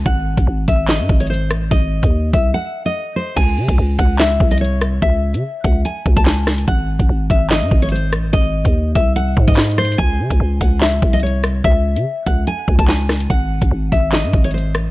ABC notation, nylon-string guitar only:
X:1
M:4/4
L:1/16
Q:1/4=145
K:C#m
V:1 name="Nylon-string guitar"
f6 e2 d3 c ^B2 z2 | d6 e2 f3 d3 ^B2 | g6 f2 e3 d c2 z2 | e6 f2 g3 a g4 |
f6 e2 d3 c ^B2 z2 | d6 e2 f3 d3 ^B2 | g6 f2 e3 d c2 z2 | e6 f2 g3 a g4 |
f6 e2 d3 c ^B2 z2 |]